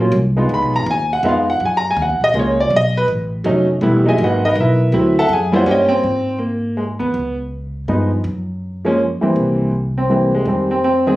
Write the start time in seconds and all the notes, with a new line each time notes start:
Already playing: A#1
0.00 F#3 A#3 C#4 F4
0.12 C2
0.37 G#3 B3 D#4 F4
0.49 C#2
0.54 B5
0.62 B1
0.74 G#1 A#5
0.86 D#2
0.91 G#5
1.13 F#5
1.23 F2 G#3 B3 D#4 F4 E5
1.28 F5
1.50 F#5
1.60 F#2
1.65 G#5
1.77 A#5
1.91 G#5
1.97 D#2
2.02 F#5
2.09 C#2
2.21 A#1 D#5
2.34 C#2 G#3 A#3 C#4 F4
2.39 C#5
2.60 D5
2.70 B1
2.76 D#5
2.97 B4
3.08 A1
3.44 F1 F#3 A3 C#4 D#4
3.81 E1 G3 A3 B3 E4
4.05 F#3 G#3 A#3 D#4 G#5
4.09 G#4 D#5 E5
4.18 G#1
4.24 F#4 B4 D#5 F#5
4.45 D#4 A#4 B4 D#5
4.55 B1
4.60 E4 A#4 B4 E5
4.92 D2 F#3 A3 C4 E4
5.19 A4 E5 F#5 A5
5.29 F#2
5.33 G#4 G#5
5.52 G3 A#3 C#4 E4 F4 F#4 C5 F#5
5.56 D5
5.66 G2 C#4
5.71 G4 C#5 D#5 G5
5.88 C4
6.03 G#2
6.38 A#3
6.77 G#3
6.99 D#2 B3
7.14 C#2
7.88 G2 F3 G#3 B3 D#4
8.24 F#2
8.85 F3 G#3 A#3 C#4
9.21 E3 G3 A#3 C4, muted upright bass stroke
9.36 C2
9.98 C4
10.10 E3 G3 A#3 C4
10.35 G#3
10.46 F2 D#3 G3 G#3 C4
10.71 C4
10.84 C4
11.06 D#3 G3 G#3 C4 G#4